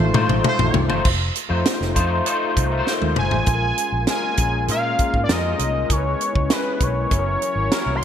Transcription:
Already playing: analog synth pad D#3 A3 F4, tine electric piano G#3 A3 D#4 F4 C5
0.00 fingered electric bass A1, horn section A3 F4 C5, mid tom
0.14 fingered electric bass A2, tine electric piano A3 D#4 F4 C5, mid tom
0.29 fingered electric bass A1, mid tom
0.44 horn section A3 F4 C5, mid tom
0.59 fingered electric bass A#1, floor tom
0.74 fingered electric bass C2, floor tom
0.88 fingered electric bass F#1, tine electric piano A3 D#4 F4 C5, floor tom
1.05 fingered electric bass F1, kick, crash
1.35 closed hi-hat
1.49 fingered electric bass F2, tine electric piano A3 D#4 F4 C5
1.66 snare, closed hi-hat
1.81 fingered electric bass F1, snare
1.95 fingered electric bass F2, tine electric piano A3 D#4 F4 C5, kick, closed hi-hat
2.25 tine electric piano A3 D#4 F4 C5, closed hi-hat
2.56 fingered electric bass C2, kick, closed hi-hat
2.71 tine electric piano A3 D#4 F4 A#4
2.79 tine electric piano C5
2.87 snare
3.02 fingered electric bass D#2, high tom
3.16 fingered electric bass F#1, analog synth lead G#5, mid tom
3.31 fingered electric bass A1, floor tom
3.46 fingered electric bass A#1, tine electric piano G#3 C#4 F4 A4, analog synth pad A#3 C#4 G#4, kick, closed hi-hat
3.54 tine electric piano A#4
3.78 closed hi-hat
3.92 fingered electric bass A#1
4.07 tine electric piano G#3 C#4 F4 A#4, analog synth lead G#5, snare, closed hi-hat
4.37 fingered electric bass A#1, kick, closed hi-hat
4.68 fingered electric bass A#2, tine electric piano G#3 C#4 F4 A#4, analog synth lead F5, closed hi-hat
4.99 kick, closed hi-hat
5.14 fingered electric bass G#2, kick
5.24 analog synth lead D5
5.29 fingered electric bass F2, tine electric piano G#3 C#4 F4 A#4, analog synth lead D#5, snare, closed hi-hat
5.59 fingered electric bass C2, closed hi-hat
5.90 fingered electric bass C#2, tine electric piano G#3 C#4 E4 A#4, analog synth pad B3 E4, analog synth lead C#5, kick, closed hi-hat
5.97 tine electric piano B4
6.21 closed hi-hat
6.35 fingered electric bass C#2, kick
6.50 tine electric piano G#3 C#4 E4 A#4, analog synth lead B4, snare, closed hi-hat
6.58 tine electric piano B4
6.80 fingered electric bass B1, analog synth lead C#5, kick, closed hi-hat
7.10 fingered electric bass F#1, analog synth pad E3 A#3 F#4, tine electric piano F#3 C#4 E4 G#4, kick, closed hi-hat
7.18 tine electric piano A#4
7.42 closed hi-hat
7.55 fingered electric bass G#1
7.71 tine electric piano F#3 C#4 E4 A#4, snare, closed hi-hat
7.86 fingered electric bass C2
7.96 analog synth lead C6
8.01 fingered electric bass F#1

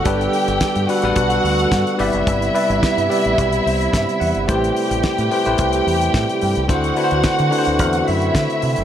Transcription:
Already playing: tonewheel organ D3 A4
0.05 fingered electric bass G1, tine electric piano G3 D4 G4 A4 B4, tonewheel organ G3 B3, string section G4 G5, kick, closed hi-hat
0.21 closed hi-hat
0.33 open hi-hat
0.48 fingered electric bass G1, closed hi-hat
0.61 kick, snare, closed hi-hat
0.76 fingered electric bass G2, closed hi-hat
0.88 tine electric piano G3 D4 F#4 A4 B4, string section F#4 F#5, open hi-hat
1.02 fingered electric bass A1, tine electric piano G3 D4 F#4 A4 B4, closed hi-hat
1.16 fingered electric bass B1, kick, closed hi-hat
1.30 closed hi-hat
1.44 fingered electric bass D2, open hi-hat
1.59 closed hi-hat
1.72 fingered electric bass G2, kick, snare, closed hi-hat
1.87 closed hi-hat
1.99 fingered electric bass G1, tonewheel organ C3 E4, tine electric piano G3 G4 B4 D5 E5, string section E4 E5, open hi-hat
2.13 fingered electric bass F#1, closed hi-hat
2.27 fingered electric bass G1, kick, closed hi-hat
2.42 closed hi-hat
2.54 tine electric piano G3 G4 B4 D5 E5, open hi-hat
2.70 fingered electric bass G1, closed hi-hat
2.83 kick, snare, closed hi-hat
2.98 fingered electric bass G2, closed hi-hat
3.09 tine electric piano G3 G4 B4 D5 E5, open hi-hat
3.25 fingered electric bass A1, closed hi-hat
3.38 fingered electric bass B1, kick, closed hi-hat
3.53 closed hi-hat
3.66 fingered electric bass C2, tine electric piano C5, open hi-hat
3.81 closed hi-hat
3.92 fingered electric bass G2, tine electric piano E5, kick, snare, closed hi-hat
4.09 closed hi-hat
4.20 fingered electric bass E2, tine electric piano F#5, open hi-hat
4.35 fingered electric bass G1, closed hi-hat
4.48 fingered electric bass A1, tine electric piano A3 E4 G4 B4 C5, tonewheel organ A3, string section G4 G5, kick, closed hi-hat
4.64 closed hi-hat
4.76 open hi-hat
4.91 fingered electric bass A1, closed hi-hat
5.03 kick, snare, closed hi-hat
5.18 fingered electric bass A2, closed hi-hat
5.31 tine electric piano A3 E4 G4 B4 C5, open hi-hat
5.45 fingered electric bass A1, tine electric piano A3 E4 G4 B4 C5, closed hi-hat
5.58 fingered electric bass C2, kick, closed hi-hat
5.73 closed hi-hat
5.87 fingered electric bass E2, open hi-hat
6.01 closed hi-hat
6.14 fingered electric bass A2, kick, snare, closed hi-hat
6.29 closed hi-hat
6.41 fingered electric bass G2, open hi-hat
6.55 fingered electric bass C2, closed hi-hat
6.68 fingered electric bass D2, tine electric piano D3 D4 E4 F#4 C5, tonewheel organ D3 A3 C4 F#4, string section F#4 F#5, kick, closed hi-hat
6.84 closed hi-hat
6.96 tine electric piano D3 D4 E4 F#4 B4, open hi-hat
7.04 tine electric piano C5
7.11 fingered electric bass D2, closed hi-hat
7.23 kick, snare, closed hi-hat
7.39 fingered electric bass D3, closed hi-hat
7.50 tine electric piano D3 D4 E4 F#4 B4, open hi-hat
7.58 tine electric piano C5
7.65 fingered electric bass D2, closed hi-hat
7.79 fingered electric bass E2, kick, closed hi-hat
7.93 closed hi-hat
8.08 fingered electric bass F#2, string section E4 E5, open hi-hat
8.22 closed hi-hat
8.35 fingered electric bass D3, kick, snare, closed hi-hat
8.50 closed hi-hat
8.62 fingered electric bass C3, open hi-hat
8.76 fingered electric bass F#1, closed hi-hat

